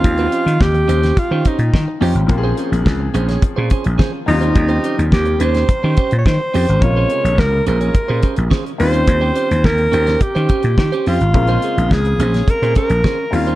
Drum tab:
HH |xxxx-xxxx-xx--ox|x-xx--xxx-xx--ox|xxxx-xxxx-xx--ox|x-xx--xxx-xx-xox|
SD |----o--o----o---|----o--o----o---|----o--o----o---|----o-------o---|
BD |o---o---o-o-o---|o---o---o-o-o---|o---o---o-o-o---|o---o---o-o-o---|

HH |x-xx-xxxxxxx-xox|xxxx-xxxxxxx--ox|
SD |----o--o----o---|----o--o----o---|
BD |o---o---o-o-o---|o---o---o-o-o---|